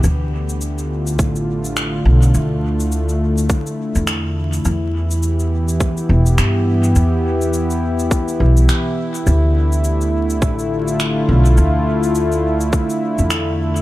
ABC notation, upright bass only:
X:1
M:4/4
L:1/16
Q:"Swing 16ths" 1/4=104
K:Ddor
V:1 name="Upright bass" clef=bass
D,,8 A,,,6 B,,,2 | D,,8 z3 E,,4- E,, | E,,8 z2 E,,,2 G,,4 | E,,8 z2 B,,,2 z4 |
D,,8 A,,,6 B,,,2 | D,,8 z3 E,,4- E,, |]